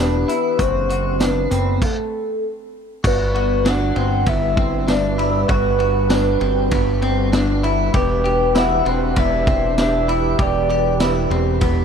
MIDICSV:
0, 0, Header, 1, 7, 480
1, 0, Start_track
1, 0, Tempo, 612245
1, 464, Time_signature, 4, 2, 24, 8
1, 9289, End_track
2, 0, Start_track
2, 0, Title_t, "Vibraphone"
2, 0, Program_c, 0, 11
2, 2383, Note_on_c, 0, 74, 59
2, 3132, Note_off_c, 0, 74, 0
2, 3583, Note_on_c, 0, 76, 57
2, 4300, Note_on_c, 0, 71, 49
2, 4332, Note_off_c, 0, 76, 0
2, 5051, Note_off_c, 0, 71, 0
2, 7189, Note_on_c, 0, 74, 70
2, 7935, Note_off_c, 0, 74, 0
2, 9289, End_track
3, 0, Start_track
3, 0, Title_t, "Soft synth lead"
3, 0, Program_c, 1, 80
3, 0, Note_on_c, 1, 71, 100
3, 484, Note_on_c, 1, 72, 100
3, 496, Note_off_c, 1, 71, 0
3, 964, Note_on_c, 1, 71, 89
3, 976, Note_off_c, 1, 72, 0
3, 1445, Note_on_c, 1, 69, 88
3, 1457, Note_off_c, 1, 71, 0
3, 1915, Note_off_c, 1, 69, 0
3, 2406, Note_on_c, 1, 71, 101
3, 2883, Note_on_c, 1, 78, 109
3, 2895, Note_off_c, 1, 71, 0
3, 3360, Note_on_c, 1, 76, 110
3, 3372, Note_off_c, 1, 78, 0
3, 3836, Note_on_c, 1, 74, 91
3, 3848, Note_off_c, 1, 76, 0
3, 4316, Note_on_c, 1, 71, 90
3, 4327, Note_off_c, 1, 74, 0
3, 5030, Note_off_c, 1, 71, 0
3, 6243, Note_on_c, 1, 71, 95
3, 6722, Note_on_c, 1, 78, 106
3, 6733, Note_off_c, 1, 71, 0
3, 7206, Note_on_c, 1, 76, 116
3, 7218, Note_off_c, 1, 78, 0
3, 7675, Note_off_c, 1, 76, 0
3, 7690, Note_on_c, 1, 76, 96
3, 8126, Note_off_c, 1, 76, 0
3, 8171, Note_on_c, 1, 74, 98
3, 8846, Note_off_c, 1, 74, 0
3, 9289, End_track
4, 0, Start_track
4, 0, Title_t, "Ambient pad"
4, 0, Program_c, 2, 92
4, 0, Note_on_c, 2, 52, 81
4, 0, Note_on_c, 2, 62, 73
4, 0, Note_on_c, 2, 67, 86
4, 0, Note_on_c, 2, 78, 75
4, 444, Note_off_c, 2, 52, 0
4, 445, Note_off_c, 2, 67, 0
4, 463, Note_on_c, 2, 60, 73
4, 1394, Note_off_c, 2, 62, 0
4, 1394, Note_off_c, 2, 78, 0
4, 1414, Note_off_c, 2, 60, 0
4, 2393, Note_on_c, 2, 71, 86
4, 2394, Note_on_c, 2, 62, 68
4, 2396, Note_on_c, 2, 66, 69
4, 2398, Note_on_c, 2, 55, 79
4, 6197, Note_off_c, 2, 71, 0
4, 6199, Note_off_c, 2, 66, 0
4, 6200, Note_off_c, 2, 55, 0
4, 6218, Note_on_c, 2, 52, 85
4, 6219, Note_on_c, 2, 71, 74
4, 6223, Note_on_c, 2, 67, 92
4, 9289, Note_off_c, 2, 52, 0
4, 9289, Note_off_c, 2, 62, 0
4, 9289, Note_off_c, 2, 67, 0
4, 9289, Note_off_c, 2, 71, 0
4, 9289, End_track
5, 0, Start_track
5, 0, Title_t, "Clean electric guitar"
5, 0, Program_c, 3, 27
5, 0, Note_on_c, 3, 62, 75
5, 222, Note_on_c, 3, 64, 67
5, 224, Note_off_c, 3, 62, 0
5, 458, Note_off_c, 3, 64, 0
5, 461, Note_on_c, 3, 66, 80
5, 694, Note_off_c, 3, 66, 0
5, 703, Note_on_c, 3, 66, 69
5, 943, Note_on_c, 3, 62, 81
5, 944, Note_off_c, 3, 66, 0
5, 1180, Note_off_c, 3, 62, 0
5, 1183, Note_on_c, 3, 60, 71
5, 1424, Note_off_c, 3, 60, 0
5, 2383, Note_on_c, 3, 66, 86
5, 2614, Note_off_c, 3, 66, 0
5, 2623, Note_on_c, 3, 66, 76
5, 2862, Note_on_c, 3, 62, 83
5, 2864, Note_off_c, 3, 66, 0
5, 3100, Note_off_c, 3, 62, 0
5, 3103, Note_on_c, 3, 60, 73
5, 3340, Note_off_c, 3, 60, 0
5, 3343, Note_on_c, 3, 59, 85
5, 3581, Note_off_c, 3, 59, 0
5, 3584, Note_on_c, 3, 60, 76
5, 3820, Note_off_c, 3, 60, 0
5, 3823, Note_on_c, 3, 62, 77
5, 4062, Note_on_c, 3, 64, 75
5, 4064, Note_off_c, 3, 62, 0
5, 4296, Note_off_c, 3, 64, 0
5, 4299, Note_on_c, 3, 66, 91
5, 4530, Note_off_c, 3, 66, 0
5, 4539, Note_on_c, 3, 66, 75
5, 4779, Note_on_c, 3, 62, 88
5, 4782, Note_off_c, 3, 66, 0
5, 5017, Note_off_c, 3, 62, 0
5, 5021, Note_on_c, 3, 60, 74
5, 5259, Note_off_c, 3, 60, 0
5, 5262, Note_on_c, 3, 59, 83
5, 5500, Note_off_c, 3, 59, 0
5, 5503, Note_on_c, 3, 60, 83
5, 5740, Note_off_c, 3, 60, 0
5, 5743, Note_on_c, 3, 62, 79
5, 5983, Note_off_c, 3, 62, 0
5, 5985, Note_on_c, 3, 64, 80
5, 6221, Note_off_c, 3, 64, 0
5, 6224, Note_on_c, 3, 67, 87
5, 6453, Note_off_c, 3, 67, 0
5, 6462, Note_on_c, 3, 67, 81
5, 6699, Note_off_c, 3, 67, 0
5, 6702, Note_on_c, 3, 64, 89
5, 6941, Note_on_c, 3, 60, 71
5, 6943, Note_off_c, 3, 64, 0
5, 7180, Note_off_c, 3, 60, 0
5, 7183, Note_on_c, 3, 59, 89
5, 7422, Note_off_c, 3, 59, 0
5, 7425, Note_on_c, 3, 60, 77
5, 7663, Note_off_c, 3, 60, 0
5, 7666, Note_on_c, 3, 62, 77
5, 7905, Note_off_c, 3, 62, 0
5, 7905, Note_on_c, 3, 64, 73
5, 8143, Note_off_c, 3, 64, 0
5, 8146, Note_on_c, 3, 67, 89
5, 8377, Note_off_c, 3, 67, 0
5, 8386, Note_on_c, 3, 67, 72
5, 8623, Note_off_c, 3, 67, 0
5, 8627, Note_on_c, 3, 64, 83
5, 8863, Note_on_c, 3, 60, 71
5, 8865, Note_off_c, 3, 64, 0
5, 9099, Note_off_c, 3, 60, 0
5, 9102, Note_on_c, 3, 59, 92
5, 9289, Note_off_c, 3, 59, 0
5, 9289, End_track
6, 0, Start_track
6, 0, Title_t, "Analog synth bass"
6, 0, Program_c, 4, 38
6, 0, Note_on_c, 4, 28, 96
6, 200, Note_off_c, 4, 28, 0
6, 464, Note_on_c, 4, 30, 102
6, 1153, Note_off_c, 4, 30, 0
6, 1186, Note_on_c, 4, 30, 95
6, 1413, Note_off_c, 4, 30, 0
6, 2386, Note_on_c, 4, 31, 105
6, 3074, Note_off_c, 4, 31, 0
6, 3105, Note_on_c, 4, 31, 105
6, 3333, Note_off_c, 4, 31, 0
6, 3347, Note_on_c, 4, 31, 112
6, 4274, Note_off_c, 4, 31, 0
6, 4305, Note_on_c, 4, 31, 116
6, 4993, Note_off_c, 4, 31, 0
6, 5028, Note_on_c, 4, 31, 96
6, 5254, Note_off_c, 4, 31, 0
6, 5267, Note_on_c, 4, 31, 110
6, 6194, Note_off_c, 4, 31, 0
6, 6226, Note_on_c, 4, 28, 118
6, 6914, Note_off_c, 4, 28, 0
6, 6946, Note_on_c, 4, 28, 100
6, 7173, Note_off_c, 4, 28, 0
6, 7189, Note_on_c, 4, 28, 112
6, 8115, Note_off_c, 4, 28, 0
6, 8147, Note_on_c, 4, 28, 110
6, 8834, Note_off_c, 4, 28, 0
6, 8863, Note_on_c, 4, 28, 107
6, 9092, Note_off_c, 4, 28, 0
6, 9108, Note_on_c, 4, 28, 105
6, 9289, Note_off_c, 4, 28, 0
6, 9289, End_track
7, 0, Start_track
7, 0, Title_t, "Drums"
7, 229, Note_on_c, 9, 42, 60
7, 307, Note_off_c, 9, 42, 0
7, 463, Note_on_c, 9, 42, 71
7, 464, Note_on_c, 9, 36, 91
7, 541, Note_off_c, 9, 42, 0
7, 542, Note_off_c, 9, 36, 0
7, 707, Note_on_c, 9, 42, 44
7, 786, Note_off_c, 9, 42, 0
7, 943, Note_on_c, 9, 54, 67
7, 945, Note_on_c, 9, 38, 94
7, 945, Note_on_c, 9, 42, 71
7, 1022, Note_off_c, 9, 54, 0
7, 1023, Note_off_c, 9, 38, 0
7, 1024, Note_off_c, 9, 42, 0
7, 1185, Note_on_c, 9, 42, 50
7, 1264, Note_off_c, 9, 42, 0
7, 1424, Note_on_c, 9, 36, 98
7, 1426, Note_on_c, 9, 49, 84
7, 1503, Note_off_c, 9, 36, 0
7, 1505, Note_off_c, 9, 49, 0
7, 2385, Note_on_c, 9, 36, 102
7, 2387, Note_on_c, 9, 49, 86
7, 2463, Note_off_c, 9, 36, 0
7, 2466, Note_off_c, 9, 49, 0
7, 2630, Note_on_c, 9, 51, 38
7, 2709, Note_off_c, 9, 51, 0
7, 2866, Note_on_c, 9, 54, 67
7, 2867, Note_on_c, 9, 38, 102
7, 2867, Note_on_c, 9, 51, 59
7, 2944, Note_off_c, 9, 54, 0
7, 2945, Note_off_c, 9, 38, 0
7, 2946, Note_off_c, 9, 51, 0
7, 3104, Note_on_c, 9, 51, 43
7, 3183, Note_off_c, 9, 51, 0
7, 3342, Note_on_c, 9, 51, 66
7, 3347, Note_on_c, 9, 36, 86
7, 3421, Note_off_c, 9, 51, 0
7, 3425, Note_off_c, 9, 36, 0
7, 3584, Note_on_c, 9, 51, 40
7, 3585, Note_on_c, 9, 36, 104
7, 3662, Note_off_c, 9, 51, 0
7, 3663, Note_off_c, 9, 36, 0
7, 3827, Note_on_c, 9, 38, 102
7, 3827, Note_on_c, 9, 51, 47
7, 3828, Note_on_c, 9, 54, 66
7, 3905, Note_off_c, 9, 38, 0
7, 3906, Note_off_c, 9, 51, 0
7, 3906, Note_off_c, 9, 54, 0
7, 4069, Note_on_c, 9, 51, 53
7, 4148, Note_off_c, 9, 51, 0
7, 4304, Note_on_c, 9, 51, 59
7, 4305, Note_on_c, 9, 36, 107
7, 4383, Note_off_c, 9, 36, 0
7, 4383, Note_off_c, 9, 51, 0
7, 4546, Note_on_c, 9, 51, 41
7, 4625, Note_off_c, 9, 51, 0
7, 4782, Note_on_c, 9, 54, 71
7, 4783, Note_on_c, 9, 38, 107
7, 4784, Note_on_c, 9, 51, 58
7, 4860, Note_off_c, 9, 54, 0
7, 4861, Note_off_c, 9, 38, 0
7, 4862, Note_off_c, 9, 51, 0
7, 5025, Note_on_c, 9, 51, 45
7, 5103, Note_off_c, 9, 51, 0
7, 5263, Note_on_c, 9, 51, 69
7, 5267, Note_on_c, 9, 36, 89
7, 5342, Note_off_c, 9, 51, 0
7, 5346, Note_off_c, 9, 36, 0
7, 5506, Note_on_c, 9, 51, 42
7, 5585, Note_off_c, 9, 51, 0
7, 5747, Note_on_c, 9, 38, 112
7, 5748, Note_on_c, 9, 51, 52
7, 5748, Note_on_c, 9, 54, 68
7, 5826, Note_off_c, 9, 38, 0
7, 5826, Note_off_c, 9, 51, 0
7, 5826, Note_off_c, 9, 54, 0
7, 5989, Note_on_c, 9, 51, 52
7, 6068, Note_off_c, 9, 51, 0
7, 6223, Note_on_c, 9, 51, 62
7, 6225, Note_on_c, 9, 36, 104
7, 6302, Note_off_c, 9, 51, 0
7, 6304, Note_off_c, 9, 36, 0
7, 6471, Note_on_c, 9, 51, 40
7, 6549, Note_off_c, 9, 51, 0
7, 6705, Note_on_c, 9, 54, 66
7, 6707, Note_on_c, 9, 38, 102
7, 6707, Note_on_c, 9, 51, 60
7, 6784, Note_off_c, 9, 54, 0
7, 6785, Note_off_c, 9, 38, 0
7, 6786, Note_off_c, 9, 51, 0
7, 6947, Note_on_c, 9, 51, 43
7, 7025, Note_off_c, 9, 51, 0
7, 7183, Note_on_c, 9, 51, 72
7, 7188, Note_on_c, 9, 36, 93
7, 7262, Note_off_c, 9, 51, 0
7, 7266, Note_off_c, 9, 36, 0
7, 7426, Note_on_c, 9, 36, 109
7, 7428, Note_on_c, 9, 51, 43
7, 7504, Note_off_c, 9, 36, 0
7, 7506, Note_off_c, 9, 51, 0
7, 7666, Note_on_c, 9, 38, 100
7, 7667, Note_on_c, 9, 51, 53
7, 7667, Note_on_c, 9, 54, 66
7, 7745, Note_off_c, 9, 38, 0
7, 7745, Note_off_c, 9, 51, 0
7, 7745, Note_off_c, 9, 54, 0
7, 7910, Note_on_c, 9, 51, 54
7, 7989, Note_off_c, 9, 51, 0
7, 8145, Note_on_c, 9, 36, 103
7, 8146, Note_on_c, 9, 51, 56
7, 8224, Note_off_c, 9, 36, 0
7, 8224, Note_off_c, 9, 51, 0
7, 8390, Note_on_c, 9, 51, 41
7, 8468, Note_off_c, 9, 51, 0
7, 8624, Note_on_c, 9, 54, 64
7, 8626, Note_on_c, 9, 38, 97
7, 8626, Note_on_c, 9, 51, 64
7, 8703, Note_off_c, 9, 54, 0
7, 8704, Note_off_c, 9, 38, 0
7, 8705, Note_off_c, 9, 51, 0
7, 8868, Note_on_c, 9, 51, 40
7, 8947, Note_off_c, 9, 51, 0
7, 9103, Note_on_c, 9, 51, 70
7, 9107, Note_on_c, 9, 36, 91
7, 9182, Note_off_c, 9, 51, 0
7, 9185, Note_off_c, 9, 36, 0
7, 9289, End_track
0, 0, End_of_file